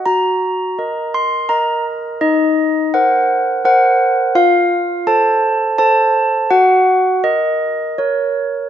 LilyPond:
\new Staff \with { instrumentName = "Handbells" } { \time 3/4 \key ees \dorian \tempo 4 = 83 << { bes''4. c'''8 bes''8 r8 | \key ges \lydian ees''4 ges''4 ges''4 | f''4 a''4 a''4 | ges''4 ees''4 des''4 | } \\ { ges'4 <bes' ees''>4 <bes' ees''>4 | ees'4 <bes' c''>4 <bes' c''>4 | f'4 <a' c''>4 <a' c''>4 | ges'4 bes'4 bes'4 | } >> }